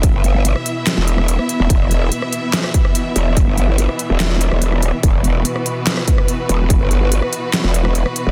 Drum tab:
HH |x-x-x-x-x-x-x-x-|x-x-x-x-x-x-x-x-|x-x-x-x-x-x-x-x-|x-x-x-x-x-x-x-x-|
CP |--------x-------|--------x-------|--------x-------|--------x-------|
SD |-----r--o--r-r--|-----r--or-r----|-----r--o--r-r--|-----r--or-r----|
BD |o---------------|o---------o-----|o---------------|o---------o-----|

HH |x-x-x-x-x-x-x-x-|
CP |--------x-------|
SD |-----r--o--r-r--|
BD |o---------------|